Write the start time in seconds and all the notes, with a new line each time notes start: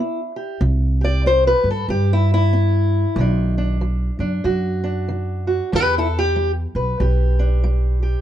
Already playing: D4 E4
0.00 B3
0.36 G4
0.61 C2 C3
1.01 G4 D5
1.26 C4 C5
1.47 B4
1.64 G2
1.71 A4
1.88 G2 G3 G4
2.13 E4
2.34 E4
2.53 C4
3.16 B1 B2 D#3
3.20 D4
3.58 D4
3.81 D#3
4.19 F#2 D4
4.44 F#2 B2 F#4
4.84 D4
5.08 D#3
5.47 F#4
5.72 E2 G4 B4
5.98 E4 A4
6.19 G4
6.36 G3
6.75 B1 B4
7.00 B1 E2 G4
7.39 D4
7.64 G3
8.03 G4